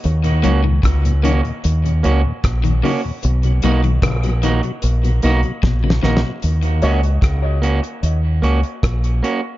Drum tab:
HH |x--x--x-----x--x--x--x--x--x--x-----x--x--o-----|x--x--x--x--x--x--x--x--x--x--x--x--------------|x--x--x--x--x-----x--x--x-----x--x--x--x--x-----|
SD |------------r-----------------------r-----------|------------r-----------------------o---o-o-o---|------------r-----------------------r-----------|
BD |------------o-----------------------o-----------|------------o-----------------------o-----------|------------o-----------------------o-----------|